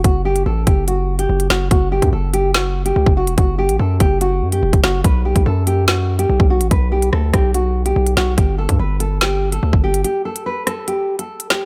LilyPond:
<<
  \new Staff \with { instrumentName = "Nylon-string guitar" } { \time 4/4 \key b \minor \tempo 4 = 144 fis'8 g'8 a'8 g'8 fis'8. g'8. fis'8 | fis'8 g'8 a'8 g'8 fis'8. g'8. fis'8 | fis'8 g'8 a'8 g'8 fis'8. g'8. fis'8 | b'8 g'8 a'8 g'8 fis'8. g'8. fis'8 |
b'8 g'8 a'8 g'8 fis'8. g'8. fis'8 | g'8 a'8 b'8 a'8 g'8. a'8. g'8 | g'8 a'8 b'8 a'8 g'8. a'8. g'8 | }
  \new Staff \with { instrumentName = "808-style bass" } { \clef bass \time 4/4 \key b \minor fis,,4 a,,8 fis,,4. fis,,8 fis,,8 | fis,,8. fis,16 fis,,2 cis,16 fis,,8 e,,16 | fis,,8. a,,16 fis,8 fis,,4 fis,8 e,,16 fis,,16 fis,,8 | b,,8. b,,16 fis,2 b,,16 b,,8 a,,16 |
b,,4 d,8 b,,4. b,,8 b,,8 | g,,8. g,16 g,,2 d,16 g,,8. | r1 | }
  \new DrumStaff \with { instrumentName = "Drums" } \drummode { \time 4/4 <hh bd>8. hh16 r8 <hh bd>8 hh8. hh16 r16 hh16 <hh sn>8 | <hh bd>8. <hh bd>16 r8 hh8 <hh sn>8. hh16 r16 bd8 hh16 | <hh bd>8. hh16 r8 <hh bd>8 hh8. hh16 r16 <hh bd>16 <hh sn>8 | <hh bd>8. <hh bd>16 r8 hh8 <hh sn>8. hh16 r16 bd8 hh16 |
<hh bd>8. hh16 ss8 <hh bd ss>8 hh8. hh16 r16 hh16 <hh sn>8 | <hh bd>8. <hh bd>16 r8 hh8 <hh sn>8. hh16 r16 bd8 hh16 | hh8. hh16 r8 <hh ss>8 hh8. hh16 r16 hh16 <hh sn>8 | }
>>